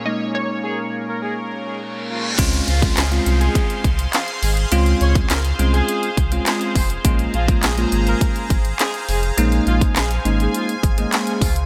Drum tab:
CC |----------------|x---------------|----------------|----------------|
HH |----------------|xxxxxxxxxxxxxxox|xxxxxxxxxxxxxxox|xxxxxxxxxxxxxxox|
CP |----------------|----x-------x---|----x-------x---|----x-------x---|
SD |----------------|----o-------o---|----o-------o---|----o-------o---|
BD |----------------|o--o----o-o-----|---o------o---o-|o--o----o-o-----|

CC |----------------|
HH |xxxxxxxxxxxxxxox|
CP |----x-------x---|
SD |----o-------o---|
BD |---o------o---o-|